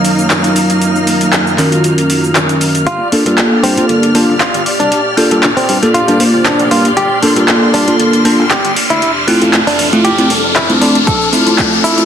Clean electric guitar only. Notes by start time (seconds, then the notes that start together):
2.87 F4
3.63 C4
4.40 F4
4.80 D4
5.57 C4
5.94 F4
6.45 D4
6.71 F4
6.97 G4
7.74 D4
8.51 G4
8.90 E4
9.67 D4
10.05 G4
10.56 E4
10.81 D4
11.07 A4
11.84 E4